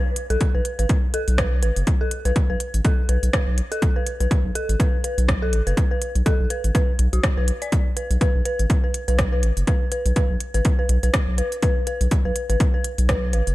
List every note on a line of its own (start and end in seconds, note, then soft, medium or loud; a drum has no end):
0.16 closed hi-hat medium
0.30 0.37 B1 loud
0.30 0.34 A4 medium
0.30 closed hi-hat soft
0.41 kick loud
0.41 closed hi-hat medium
0.55 0.61 B1 loud
0.55 0.61 B4 medium
0.65 closed hi-hat medium
0.79 0.86 A1 medium
0.79 0.83 B4 medium
0.79 closed hi-hat soft
0.89 kick loud
0.89 closed hi-hat medium
1.14 1.19 A4 loud
1.14 closed hi-hat medium
1.28 1.64 B1 medium
1.28 closed hi-hat soft
1.38 1.47 B4 medium
1.38 kick loud
1.38 cross-stick loud
1.38 closed hi-hat medium
1.63 1.71 A1 medium
1.63 1.68 B4 medium
1.63 closed hi-hat medium
1.76 1.83 F#1 medium
1.76 closed hi-hat soft
1.87 kick loud
1.87 closed hi-hat medium
2.01 2.05 A4 medium
2.11 closed hi-hat loud
2.25 2.32 B1 medium
2.25 2.32 B4 medium
2.25 closed hi-hat soft
2.36 kick loud
2.36 closed hi-hat medium
2.50 2.56 B1 loud
2.50 2.54 B4 medium
2.60 closed hi-hat loud
2.74 2.81 A1 medium
2.74 closed hi-hat soft
2.85 2.90 A4 loud
2.85 kick loud
2.85 closed hi-hat medium
3.09 3.18 B1 loud
3.09 3.17 B4 medium
3.09 closed hi-hat medium
3.23 3.29 B1 medium
3.23 closed hi-hat soft
3.33 3.39 B4 medium
3.33 kick loud
3.33 cross-stick loud
3.33 closed hi-hat medium
3.47 3.61 B1 medium
3.58 closed hi-hat medium
3.72 3.76 A4 loud
3.72 closed hi-hat soft
3.82 kick loud
3.82 closed hi-hat medium
3.96 4.02 B4 medium
4.07 closed hi-hat medium
4.20 4.27 B1 medium
4.20 4.25 B4 medium
4.20 closed hi-hat soft
4.31 kick loud
4.31 closed hi-hat soft
4.45 4.51 B1 loud
4.55 4.61 A4 loud
4.55 closed hi-hat medium
4.69 4.76 A1 medium
4.69 closed hi-hat soft
4.80 4.88 B4 medium
4.80 kick loud
4.80 closed hi-hat medium
5.04 5.10 B4 medium
5.04 closed hi-hat loud
5.18 5.54 B1 medium
5.18 closed hi-hat soft
5.28 kick loud
5.28 cross-stick loud
5.28 closed hi-hat soft
5.42 5.47 A4 loud
5.53 5.62 A1 medium
5.53 closed hi-hat loud
5.67 5.73 F#1 medium
5.67 5.73 B4 medium
5.67 closed hi-hat soft
5.77 kick loud
5.77 closed hi-hat soft
5.91 5.95 B4 medium
6.02 closed hi-hat medium
6.15 6.22 B1 loud
6.15 closed hi-hat soft
6.26 6.32 A4 loud
6.26 kick loud
6.26 closed hi-hat soft
6.40 6.46 B1 loud
6.50 6.59 B4 medium
6.50 closed hi-hat loud
6.64 6.71 A1 medium
6.64 closed hi-hat soft
6.75 6.80 B4 medium
6.75 kick loud
6.75 closed hi-hat soft
6.99 7.08 B1 loud
6.99 closed hi-hat loud
7.13 7.20 B1 medium
7.13 7.19 F#4 medium
7.13 closed hi-hat soft
7.23 kick loud
7.23 cross-stick loud
7.23 closed hi-hat soft
7.37 7.51 B1 medium
7.37 7.40 B4 medium
7.48 closed hi-hat loud
7.62 7.66 D5 medium
7.62 closed hi-hat soft
7.72 kick loud
7.72 closed hi-hat medium
7.97 8.02 B4 medium
7.97 closed hi-hat medium
8.11 8.17 B1 loud
8.11 closed hi-hat soft
8.21 8.30 B4 medium
8.21 kick loud
8.21 closed hi-hat soft
8.35 8.42 B1 loud
8.45 8.51 B4 medium
8.45 closed hi-hat medium
8.59 8.66 A1 medium
8.59 closed hi-hat soft
8.70 kick loud
8.70 closed hi-hat soft
8.84 8.88 B4 medium
8.94 closed hi-hat loud
9.08 9.44 B1 medium
9.08 9.15 B4 medium
9.08 closed hi-hat soft
9.19 kick loud
9.19 cross-stick loud
9.19 closed hi-hat soft
9.32 9.37 B4 medium
9.43 9.52 A1 medium
9.43 closed hi-hat medium
9.57 9.63 F#1 medium
9.57 closed hi-hat soft
9.67 9.73 B4 medium
9.67 kick loud
9.67 closed hi-hat medium
9.92 10.00 B4 medium
9.92 closed hi-hat medium
10.06 10.12 B1 loud
10.06 closed hi-hat soft
10.16 10.22 B4 medium
10.16 kick loud
10.16 closed hi-hat medium
10.30 10.37 B1 loud
10.40 closed hi-hat medium
10.54 10.61 A1 medium
10.54 10.59 B4 medium
10.54 closed hi-hat soft
10.65 kick loud
10.65 closed hi-hat medium
10.79 10.85 B4 medium
10.89 10.98 B1 loud
10.89 closed hi-hat medium
11.03 11.10 B1 medium
11.03 11.08 B4 medium
11.03 closed hi-hat soft
11.14 kick loud
11.14 cross-stick loud
11.14 closed hi-hat medium
11.28 11.42 B1 medium
11.38 11.44 B4 medium
11.38 closed hi-hat medium
11.52 closed hi-hat soft
11.62 11.71 B4 medium
11.62 kick loud
11.62 closed hi-hat medium
11.87 11.93 B4 medium
11.87 closed hi-hat medium
12.01 12.07 B1 loud
12.01 closed hi-hat soft
12.11 kick loud
12.11 closed hi-hat medium
12.25 12.32 B1 loud
12.25 12.30 B4 medium
12.36 closed hi-hat medium
12.50 12.56 A1 medium
12.50 12.56 B4 medium
12.50 closed hi-hat soft
12.60 kick loud
12.60 closed hi-hat medium
12.74 12.78 B4 medium
12.84 closed hi-hat medium
12.98 13.35 B1 medium
12.98 closed hi-hat soft
13.09 13.15 B4 medium
13.09 kick loud
13.09 cross-stick loud
13.09 closed hi-hat medium
13.33 13.42 A1 medium
13.33 13.42 B4 medium
13.33 closed hi-hat medium
13.47 13.54 F#1 medium
13.47 closed hi-hat soft